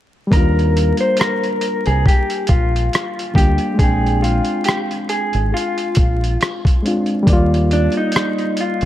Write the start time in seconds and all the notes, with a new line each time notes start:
0.27 G3 A#3
0.32 D#2 D4 A#4, kick, closed hi-hat
0.37 F4
0.59 closed hi-hat
0.77 closed hi-hat
0.97 C5, closed hi-hat
1.17 A#4, closed hi-hat
1.21 cross-stick
1.44 closed hi-hat
1.61 closed hi-hat
1.86 C2 G#4, closed hi-hat
2.06 G4, kick, closed hi-hat
2.30 closed hi-hat
2.47 A#1 F4, kick, closed hi-hat
2.76 closed hi-hat
2.93 cross-stick, closed hi-hat
3.19 closed hi-hat
3.34 D2 G3 A#3 D4 G4, kick
3.38 G4, closed hi-hat
3.58 closed hi-hat
3.74 G#3 C4
3.79 A#1 D4 G#4, kick, closed hi-hat
3.84 G5
4.06 closed hi-hat
4.22 F4, closed hi-hat
4.45 closed hi-hat
4.64 G4, closed hi-hat
4.69 cross-stick
4.91 closed hi-hat
5.09 G#4, closed hi-hat
5.33 G#1, closed hi-hat
5.54 F4, closed hi-hat
5.78 closed hi-hat
5.95 A#1, kick, closed hi-hat
6.24 closed hi-hat
6.41 cross-stick, closed hi-hat
6.65 kick, closed hi-hat
6.83 G#3 C4 D4, closed hi-hat
6.88 F4
7.06 closed hi-hat
7.23 G3 A#3
7.27 D#2 D5, kick, closed hi-hat
7.33 F4
7.54 closed hi-hat
7.71 D4, closed hi-hat
7.92 closed hi-hat
7.97 D#4
8.12 closed hi-hat
8.16 cross-stick
8.38 closed hi-hat
8.57 F4, closed hi-hat
8.81 closed hi-hat